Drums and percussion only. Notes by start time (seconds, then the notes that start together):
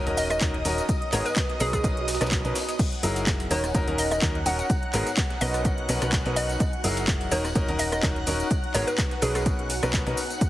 0.07 closed hi-hat
0.17 open hi-hat, tambourine, shaker
0.30 cross-stick, closed hi-hat, tambourine, shaker
0.41 kick, snare, clap, closed hi-hat, shaker
0.54 closed hi-hat
0.65 snare, open hi-hat, tambourine, shaker
0.78 closed hi-hat, tambourine, shaker
0.89 kick, closed hi-hat, tambourine, shaker
1.02 closed hi-hat
1.12 clap, open hi-hat, tambourine, shaker
1.26 snare, closed hi-hat, tambourine, shaker
1.36 kick, snare, clap, closed hi-hat, shaker
1.49 snare, closed hi-hat
1.60 open hi-hat, tambourine, shaker
1.73 kick, cross-stick, closed hi-hat, tambourine, shaker
1.83 kick, closed hi-hat, tambourine, shaker
1.97 closed hi-hat
2.08 snare, open hi-hat, tambourine, shaker
2.14 snare, shaker
2.21 cross-stick, snare, closed hi-hat, tambourine, shaker
2.26 snare, shaker
2.31 kick, snare, clap, closed hi-hat, shaker
2.45 closed hi-hat
2.56 snare, open hi-hat, tambourine, shaker
2.69 closed hi-hat, tambourine, shaker
2.79 kick, closed hi-hat, crash, tambourine, shaker
2.92 closed hi-hat
3.03 open hi-hat, tambourine, shaker
3.16 closed hi-hat, tambourine, shaker
3.27 kick, snare, clap, closed hi-hat, tambourine, shaker
3.40 closed hi-hat
3.51 open hi-hat, tambourine, shaker
3.64 cross-stick, snare, closed hi-hat, tambourine, shaker
3.75 kick, closed hi-hat, tambourine, shaker
3.88 closed hi-hat
3.98 open hi-hat, tambourine, shaker
4.11 cross-stick, closed hi-hat, tambourine, shaker
4.22 kick, snare, clap, closed hi-hat, shaker
4.35 closed hi-hat
4.46 snare, open hi-hat, tambourine, shaker
4.59 closed hi-hat, tambourine, shaker
4.70 kick, closed hi-hat, tambourine, shaker
4.83 closed hi-hat
4.93 clap, open hi-hat, tambourine, shaker
5.06 snare, closed hi-hat, tambourine, shaker
5.17 kick, snare, clap, closed hi-hat, shaker
5.30 snare, closed hi-hat
5.41 open hi-hat, tambourine, shaker
5.54 cross-stick, closed hi-hat, tambourine, shaker
5.65 kick, closed hi-hat, tambourine, shaker
5.78 closed hi-hat
5.89 open hi-hat, tambourine, shaker
6.02 cross-stick, closed hi-hat, tambourine, shaker
6.12 kick, snare, clap, closed hi-hat, shaker
6.26 closed hi-hat
6.36 open hi-hat, tambourine, shaker
6.49 snare, closed hi-hat, tambourine, shaker
6.60 kick, closed hi-hat, tambourine, shaker
6.73 closed hi-hat
6.84 open hi-hat, tambourine, shaker
6.97 closed hi-hat, tambourine, shaker
7.08 kick, snare, clap, closed hi-hat, shaker
7.21 closed hi-hat
7.31 open hi-hat, tambourine, shaker
7.45 cross-stick, snare, closed hi-hat, tambourine, shaker
7.55 kick, closed hi-hat, tambourine, shaker
7.68 closed hi-hat
7.79 open hi-hat, tambourine, shaker
7.92 cross-stick, closed hi-hat, tambourine, shaker
8.03 kick, snare, clap, closed hi-hat, shaker
8.16 closed hi-hat
8.27 snare, open hi-hat, tambourine, shaker
8.40 closed hi-hat, tambourine, shaker
8.51 kick, closed hi-hat, tambourine, shaker
8.64 closed hi-hat
8.74 clap, open hi-hat, tambourine, shaker
8.87 snare, closed hi-hat, tambourine, shaker
8.98 kick, snare, clap, closed hi-hat, shaker
9.11 snare, closed hi-hat
9.22 open hi-hat, tambourine, shaker
9.35 cross-stick, closed hi-hat, tambourine, shaker
9.46 kick, closed hi-hat, tambourine, shaker
9.59 closed hi-hat
9.70 open hi-hat, tambourine, shaker
9.83 cross-stick, closed hi-hat, tambourine, shaker
9.93 kick, snare, clap, closed hi-hat, shaker
10.07 closed hi-hat
10.17 open hi-hat, tambourine, shaker
10.30 closed hi-hat, tambourine, shaker
10.41 kick, closed hi-hat, shaker